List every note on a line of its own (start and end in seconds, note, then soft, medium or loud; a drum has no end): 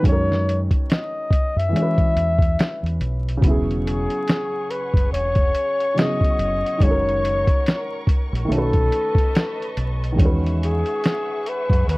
0.00 1.67 D#3 medium
0.00 1.69 G#3 medium
0.00 kick loud
0.04 0.68 F#2 loud
0.04 1.70 C#4 medium
0.04 0.62 C#5 loud
0.04 closed hi-hat medium
0.09 1.72 F#4 soft
0.09 1.74 A#4 medium
0.32 snare soft
0.49 closed hi-hat medium
0.71 kick medium
0.71 closed hi-hat soft
0.90 1.59 D#5 medium
0.90 snare loud
0.90 closed hi-hat medium
1.31 kick loud
1.31 closed hi-hat medium
1.56 1.72 F#2 medium
1.56 3.00 E5 loud
1.56 closed hi-hat soft
1.69 3.36 E3 medium
1.69 3.38 G#3 medium
1.74 2.13 E3 medium
1.74 3.40 C#4 medium
1.74 closed hi-hat medium
1.79 3.41 F#4 medium
1.79 3.43 B4 medium
1.98 kick medium
1.98 closed hi-hat soft
2.16 2.56 E2 medium
2.16 closed hi-hat medium
2.38 kick medium
2.38 closed hi-hat soft
2.59 snare loud
2.59 closed hi-hat medium
2.83 2.99 E2 medium
2.83 closed hi-hat soft
3.00 3.40 B1 medium
3.00 closed hi-hat medium
3.28 closed hi-hat soft
3.37 5.89 C#3 medium
3.37 5.90 F#3 medium
3.42 4.06 E1 loud
3.42 5.92 B3 medium
3.42 6.77 G#4 medium
3.42 8.45 C#5 medium
3.42 8.45 F#5 medium
3.42 10.14 C#6 medium
3.42 kick loud
3.42 closed hi-hat loud
3.47 5.94 E4 medium
3.47 5.95 G#4 medium
3.71 closed hi-hat soft
3.87 4.72 G#4 medium
3.87 closed hi-hat medium
4.10 closed hi-hat soft
4.28 snare medium
4.28 closed hi-hat medium
4.71 5.12 B4 medium
4.71 closed hi-hat medium
4.94 5.10 F#1 medium
4.94 kick medium
4.94 closed hi-hat soft
5.11 5.51 E1 medium
5.11 6.00 C#5 medium
5.11 closed hi-hat medium
5.35 kick medium
5.35 closed hi-hat soft
5.55 closed hi-hat medium
5.80 closed hi-hat soft
5.94 6.79 C#3 soft
5.94 6.80 F#3 soft
5.94 6.81 B3 soft
5.94 6.84 D#5 loud
5.94 closed hi-hat medium
5.99 6.82 E4 soft
5.99 6.83 G#4 medium
5.99 snare loud
6.21 kick medium
6.21 closed hi-hat soft
6.38 6.62 F#1 medium
6.38 closed hi-hat medium
6.66 closed hi-hat soft
6.78 7.44 F#1 medium
6.78 8.43 D#3 medium
6.78 8.46 G#3 medium
6.78 8.47 A#4 medium
6.78 kick loud
6.78 closed hi-hat medium
6.83 8.48 C#4 medium
6.83 8.08 C#5 loud
6.87 8.49 F#4 medium
6.87 8.51 A#4 medium
7.08 closed hi-hat soft
7.25 closed hi-hat medium
7.47 kick medium
7.47 closed hi-hat soft
7.66 snare medium
7.66 closed hi-hat medium
8.07 kick medium
8.07 closed hi-hat medium
8.33 8.49 A#1 medium
8.33 closed hi-hat soft
8.45 10.11 D#3 medium
8.45 10.14 A3 medium
8.50 8.90 B1 medium
8.50 10.16 C#4 medium
8.50 9.73 A4 loud
8.50 10.17 B4 medium
8.50 10.17 D#5 medium
8.50 10.17 A5 medium
8.50 closed hi-hat medium
8.55 10.17 F#4 medium
8.55 10.19 B4 medium
8.73 kick medium
8.73 closed hi-hat soft
8.92 closed hi-hat medium
9.15 kick medium
9.15 closed hi-hat soft
9.35 snare loud
9.35 closed hi-hat medium
9.62 closed hi-hat soft
9.77 10.17 B1 medium
9.77 closed hi-hat medium
10.04 closed hi-hat soft
10.12 11.98 D#3 medium
10.12 11.98 G#3 medium
10.18 10.82 E2 loud
10.18 11.98 C#4 medium
10.18 11.98 G#4 medium
10.18 11.98 E5 medium
10.18 11.98 F#5 medium
10.18 11.98 C#6 medium
10.18 kick loud
10.18 closed hi-hat loud
10.22 11.98 F#4 medium
10.22 11.98 B4 medium
10.46 closed hi-hat soft
10.63 11.50 G#4 medium
10.63 closed hi-hat medium
10.86 closed hi-hat soft
11.04 snare medium
11.04 closed hi-hat medium
11.46 11.89 B4 medium
11.46 closed hi-hat medium
11.70 11.86 F#2 medium
11.70 kick medium
11.70 closed hi-hat soft
11.88 11.98 D#2 medium
11.88 11.98 B4 medium
11.88 closed hi-hat medium